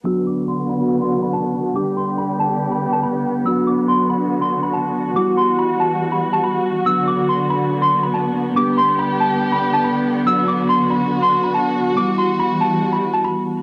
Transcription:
0.04 D3 F#3 B3 D4 F#4 E6
0.27 D6
0.48 C6
0.69 B5
1.01 C6
1.22 B5
1.33 A5
1.74 D3 G3 B3 D4 G4 D6
1.97 C6
2.18 B5
2.40 A5
2.71 B5
2.93 A5
3.03 B5
3.44 D3 F#3 B3 D4 F#4 E6
3.67 D6
3.88 C6
4.10 B5
4.41 C6
4.63 B5
4.73 A5
5.14 E3 G3 B3 E4 F#4 D6
5.37 C6
5.59 B5
5.80 A5
6.12 B5
6.33 A5
6.44 B5
6.85 D3 F#3 B3 D4 F#4 E6
7.07 D6
7.29 C6
7.50 B5
7.82 C6
8.03 B5
8.14 A5
8.55 D3 G3 B3 D4 G4 D6
8.78 C6
8.99 B5
9.20 A5
9.52 B5
9.73 A5
9.84 B5
10.25 F#3 B3 D4 F#4 E6
10.48 D6
10.69 C6
10.91 B5
11.22 C6
11.44 B5
11.54 A5
11.95 E3 G3 B3 E4 F#4 D6
12.18 C6
12.39 B5
12.61 A5
12.93 B5
13.14 A5
13.24 B5

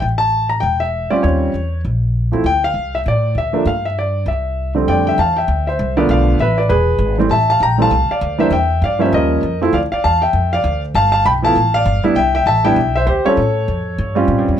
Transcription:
0.00 A1 G5
0.18 A5
0.49 A#5
0.60 E1 G5
0.80 E5
1.10 G3 C4 C#4 F4 D5, muted upright bass stroke
1.23 D#2 C#5
1.54 E2
1.85 A#1
2.32 D#2 F3 A3 C4 E4
2.44 D2 G5
2.64 F5
2.74 C2
2.95 E5
3.06 A2 D5
3.35 D2 E5
3.53 F3 A3 A#3 D4
3.65 G2 F5
3.85 E5
3.99 D5
4.26 C2 E5
4.75 F2 D3 G3 A3 C4
4.88 F2 D5 G5
5.07 E5 G5
5.18 E2 F5 A5
5.37 E5 G5
5.48 D2
5.67 C5 E5
5.79 C2
5.97 D3 F3 A3 B3 A#4 D5
6.09 B1 F5
6.13 D5
6.39 A1 B4 E5
6.58 B4 D5
6.69 E1 G#4 B4
6.99 G#1
7.18 E3 G3 A3 C4
7.29 A1 E5 A5
7.50 F5 A5
7.60 A#1 G5 A#5
7.78 E3 G3 A3 C4
7.82 F5 A5
7.91 C2
8.09 D5 F5, muted upright bass stroke
8.21 D2
8.38 E3 G3 A#3 D4 C5 E5
8.50 E2 E5 G5
8.82 G2 D5 F5
8.99 F3 G3 A#3 C#4 C5 E5
9.12 D#2 A#4 D#5
9.43 F2
9.62 F3 A3 C4 E4
9.73 D2 D5 F5
9.92 D5 F5, muted upright bass stroke
10.04 E2 F5 A5
10.22 E5 G5
10.33 F2
10.53 D5 F5
10.64 D2
10.94 G1 F5 A5
11.12 F5 A5
11.25 B1 G5 B5
11.42 F3 A3 B3 E4 F5 A5
11.56 A1
11.74 D5 F5
11.86 G1
12.04 G3 B3 D4 E4, muted upright bass stroke
12.15 C2 E5 G5
12.35 E5 G5
12.46 A1 E5 A5
12.65 G3 B3 D4 E4 E5 G5
12.76 B1
12.96 C5 E5
13.07 D2 G4 C5
13.25 G3 C4 C#4 F4 A4 C#5, muted upright bass stroke
13.37 A2
13.68 F2
13.98 G2
14.15 G3 C4 C#4 F4
14.28 A2
14.38 G2
14.48 F2

